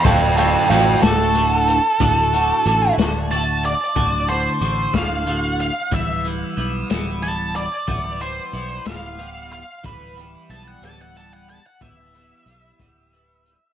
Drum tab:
HH |xxxxxx|xxxxxx|xxxxxx|xxxxxx|
SD |---o--|---o--|---o--|---o--|
BD |o-----|o-----|o--o--|o-----|

HH |xxxxxx|xxxxxx|xxxxxx|
SD |---o--|------|------|
BD |o-----|o-----|o--o--|